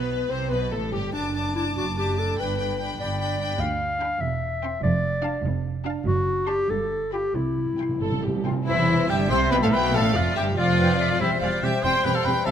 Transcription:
Already playing: double bass section B1, cello section B2, viola section B3, violin section B4, clarinet B4
0.29 double bass section C2, cello section C3, viola section C4, clarinet C5, violin section C5
0.50 double bass section B1, cello section B2, viola section B3, violin section B4, clarinet B4
0.71 double bass section A1, cello section A2, viola section A3, violin section A4, clarinet A4
0.91 double bass section G1, cello section G2, viola section G3, clarinet G4, violin section G4
1.13 double bass section F#1, cello section F#2, clarinet D4, viola section D4, violin section A5 D6
1.33 viola section D4, violin section A5 D6
1.55 viola section D4, clarinet E4, violin section A5 D6
1.76 double bass section F#1, cello section F#2, viola section D4, clarinet F#4, violin section A5 D6
1.96 viola section D4, clarinet G4, violin section A5 D6
2.17 viola section D4, clarinet A4, violin section A5 D6
2.38 double bass section G1, cello section G2, viola section D4, clarinet B4, violin section G5 B5
2.57 viola section D4, violin section G5 B5
2.78 viola section D4, violin section G5 B5
2.98 double bass section G1, cello section G2, viola section D4, clarinet D5, violin section G5 B5
3.19 viola section D4, violin section G5 B5
3.40 viola section D4, violin section G5 B5
3.60 double bass section D2, cello section D2, clarinet F5
4.02 viola section D4, violin section G5 B5
4.21 double bass section E1, cello section E2, clarinet E5
4.63 viola section C4, violin section G5 C6
4.82 double bass section F1, cello section F2, clarinet D5
5.23 viola section D4, violin section F5 A5
5.44 double bass section F1, cello section F2
5.85 viola section D4, violin section F5 A5
6.05 double bass section F#1, cello section F#2, clarinet F#4
6.47 viola section D4, clarinet G4, violin section A5 C6
6.69 double bass section G1, cello section G2, clarinet A4
7.13 viola section F4, clarinet G4, violin section G5 B5
7.35 double bass section C2, timpani C3, cello section C3, clarinet E4
7.43 timpani C3
7.50 timpani C3
7.58 timpani C3
7.66 timpani C3
7.73 timpani C3
7.79 timpani C3, viola section E4, violin section G5 C6
7.89 timpani C3
7.96 double bass section G1, timpani C3
8.01 cello section G2, timpani C3, viola section A4
8.12 timpani C3
8.20 timpani C3, viola section G4
8.27 timpani C3
8.36 timpani C3
8.44 timpani C3, viola section F4, violin section G5 C6
8.52 timpani C3
8.66 double bass section E1, cello section E2, viola section E3, french horn section E3, violin section E4 C5, oboe E4, flute E5
9.09 double bass section G1, cello section G2, french horn section G3, viola section G3, violin section G4 E5, oboe G4, flute G5
9.29 double bass section C2, cello section C3, french horn section C4, viola section C4, violin section C5 G5, oboe C5, clarinet E5, flute C6
9.50 double bass section B1, cello section B2, french horn section B3, viola section B3, violin section B4 G5, oboe B4, flute B5
9.60 french horn section A3, viola section A3, violin section A4 F5, oboe A4, flute A5
9.64 cello section A2
9.70 double bass section B1, french horn section B3, viola section B3, violin section B4, oboe B4, flute B5
9.74 cello section B2, violin section G5
9.94 double bass section A1, cello section A2, french horn section A3, viola section A3, violin section A4 F5, oboe A4, flute A5
10.15 double bass section F1, cello section F2, french horn section F3, viola section F3, oboe F4, violin section F4 D5, flute F5
10.35 double bass section G1, cello section G2, french horn section G3, viola section G3, oboe G4, violin section G4 E5, flute G5
10.57 double bass section F1, cello section F2, french horn section F3, viola section F3, oboe F4, violin section F4 D5, clarinet D5, flute F5
10.78 clarinet B4
10.84 flute G5
10.93 flute F5
10.99 clarinet D5, flute E5
11.11 flute F5
11.20 double bass section E1, cello section E2, french horn section G3 C5, viola section G3 C4, oboe E4, violin section G4 C5, clarinet C5, flute E5
11.41 double bass section E1, cello section E2, viola section G3 C4, oboe F4, violin section G4 D5, flute F5
11.62 double bass section E1, cello section E2, viola section G3 C4, oboe G4, violin section G4 E5, flute G5
11.83 double bass section E1, cello section E2, viola section G3 C4, violin section G4 G5, oboe C5, clarinet C5, flute C6
12.04 double bass section E1, cello section E2, viola section G3 C4, violin section G4 G5, oboe B4, flute B5
12.15 oboe A4, violin section F5, flute A5
12.24 double bass section E1, cello section E2, viola section G3 C4, violin section G4 G5, oboe B4, flute B5
12.46 cello section C2, double bass section C2, viola section G3 C4, oboe A4, clarinet E5, violin section F5, flute A5

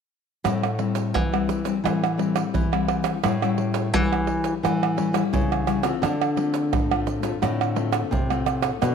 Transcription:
0.45 nylon-string guitar A2 G3 C4 E4, pandeiro, tamborim, shaker, surdo
0.63 pandeiro, tamborim, shaker
0.78 nylon-string guitar G3 C4 E4, pandeiro
0.95 pandeiro, shaker
1.14 nylon-string guitar E3, pandeiro, tamborim, shaker, surdo
1.32 nylon-string guitar G3 C4 E4, pandeiro, tamborim, shaker
1.49 pandeiro, shaker
1.64 nylon-string guitar G3 C4 E4, pandeiro, shaker
1.84 nylon-string guitar A2 E3 G3 C4 E4, pandeiro, tamborim, shaker, surdo
2.04 pandeiro, tamborim, shaker
2.18 nylon-string guitar G3 C4 E4, pandeiro
2.36 pandeiro, tamborim, shaker
2.54 nylon-string guitar E3, pandeiro, shaker, surdo
2.72 nylon-string guitar G3 C4 E4, pandeiro, tamborim, shaker
2.88 pandeiro, tamborim
3.04 pandeiro, tamborim, shaker
3.24 nylon-string guitar A2 G3 C#4 E4, pandeiro, tamborim, shaker, surdo
3.42 nylon-string guitar G3 C#4 E4, pandeiro, tamborim, shaker
3.58 pandeiro
3.74 pandeiro, shaker
3.93 nylon-string guitar E3 G3 C#4 E4, pandeiro, tamborim, shaker, surdo
4.13 pandeiro, tamborim, shaker
4.27 pandeiro
4.44 pandeiro, shaker
4.62 nylon-string guitar A2 E3 G3 C#4 E4, pandeiro, tamborim, shaker, surdo
4.83 pandeiro, tamborim, shaker
4.96 nylon-string guitar G3 C#4 E4, pandeiro
5.13 nylon-string guitar G3 C#4 E4, pandeiro, tamborim, shaker
5.33 nylon-string guitar C#3 E3, pandeiro, shaker, surdo
5.52 pandeiro, tamborim, shaker
5.67 nylon-string guitar G3 C#4 E4, pandeiro, tamborim, shaker
5.83 nylon-string guitar A3 C4 F4, pandeiro, tamborim, shaker
6.03 nylon-string guitar D3, pandeiro, tamborim, shaker, surdo
6.21 pandeiro, tamborim, shaker
6.36 nylon-string guitar A3 C4 F4, pandeiro
6.54 pandeiro, shaker
6.73 nylon-string guitar A2, pandeiro, tamborim, shaker, surdo
6.91 nylon-string guitar A3 C4 F4, pandeiro, tamborim, shaker
7.07 pandeiro, shaker
7.22 nylon-string guitar A3 C4 F4, pandeiro, shaker
7.42 nylon-string guitar A2 D3 A3 C4 F4, pandeiro, tamborim, shaker, surdo
7.61 pandeiro, tamborim, shaker
7.75 nylon-string guitar A3 C4 F4, pandeiro
7.93 pandeiro, tamborim, shaker
8.11 nylon-string guitar A2 C3, pandeiro, shaker, surdo
8.30 nylon-string guitar A3 C4 F4, pandeiro, tamborim, shaker
8.46 pandeiro, tamborim, shaker
8.62 pandeiro, tamborim, shaker
8.82 nylon-string guitar B2 A3 D4 F#4, pandeiro, tamborim, shaker, surdo

